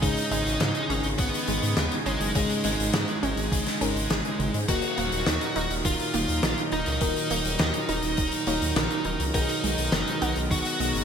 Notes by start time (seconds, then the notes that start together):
Already playing: C#3 G#3 G#4
0.02 G#1 G#2 C#3 D#3 G#3 C#4 D#4 G#4, kick, closed hi-hat
0.17 closed hi-hat
0.31 G#1 G#3, closed hi-hat
0.46 G#1, closed hi-hat
0.60 G#2 C#3, snare, closed hi-hat
0.75 closed hi-hat
0.90 G#1 C#4, closed hi-hat
1.03 G#1, closed hi-hat
1.18 G#1 C#3 B3, kick, closed hi-hat
1.34 closed hi-hat
1.48 G#1 G#2 G#3 C#4 D#4 G#4, closed hi-hat
1.63 G#2, closed hi-hat
1.77 D#2 C#3, snare, closed hi-hat
1.92 closed hi-hat
2.06 G#1 G#3 C#4, closed hi-hat
2.21 F#1, closed hi-hat
2.35 G#1 G#2 C#3 G#3 C#4 D#4 G#4, kick, closed hi-hat
2.50 closed hi-hat
2.64 G#1 G#3, closed hi-hat
2.79 G#1, closed hi-hat
2.93 G#2 C#3, snare, closed hi-hat
3.08 closed hi-hat
3.23 G#1 C#4, closed hi-hat
3.37 G#1, closed hi-hat
3.52 G#1 C#3, kick, closed hi-hat
3.66 snare, closed hi-hat
3.81 G#1 G#2 G#3 C#4 D#4 A#4, closed hi-hat
3.96 G#1, closed hi-hat
4.10 G#1 G#4, snare, closed hi-hat
4.25 closed hi-hat
4.39 G#1 C#3, closed hi-hat
4.54 G#2, closed hi-hat
4.68 D#1 A#2 D#3 F#3 A#3 D#4 F#4 A#4, kick, closed hi-hat, crash
4.82 closed hi-hat
4.98 D#1 A#3, closed hi-hat
5.12 D#1, closed hi-hat
5.26 D#2 D#3, snare, closed hi-hat
5.41 closed hi-hat
5.56 D#1 D#4, closed hi-hat
5.71 D#1, closed hi-hat
5.85 D#1 D#3 F4, kick, closed hi-hat
6.00 closed hi-hat
6.14 D#1 D#3 F#3 A#3 D#4 A#4, closed hi-hat
6.28 D#2, closed hi-hat
6.43 A#1 D#3, snare, closed hi-hat
6.58 closed hi-hat
6.72 D#1 D#4, closed hi-hat
6.86 C#2, closed hi-hat
7.01 D#1 D#3 A#3 D#4 F#4 A#4, kick, closed hi-hat
7.16 closed hi-hat
7.30 D#1 A#3, closed hi-hat
7.45 D#1, closed hi-hat
7.59 D#2 D#3, snare, closed hi-hat
7.74 closed hi-hat
7.89 D#1 D#4, closed hi-hat
8.03 D#1, closed hi-hat
8.17 D#1 D#3, kick, closed hi-hat
8.32 closed hi-hat
8.47 D#1 D#3 A#3 D#4 F#4 C#5, closed hi-hat
8.62 D#2, closed hi-hat
8.76 A#1 D#3, snare, closed hi-hat
8.90 closed hi-hat
9.04 D#1 D#4, closed hi-hat
9.20 C#2, closed hi-hat
9.34 B1 B2 D#3 G#3 B3 D#4 F#4 G#4, kick, closed hi-hat
9.49 closed hi-hat
9.64 B1 G#3, closed hi-hat
9.78 B1, closed hi-hat
9.92 F#1 D#3, snare, closed hi-hat
10.07 closed hi-hat
10.22 B1 B3, closed hi-hat
10.36 B1, closed hi-hat
10.51 B1 D#3 F#4, kick, closed hi-hat
10.65 closed hi-hat
10.80 B1 B2 G#3 B3 D#4 F#4 G#4, closed hi-hat
10.95 F#1, closed hi-hat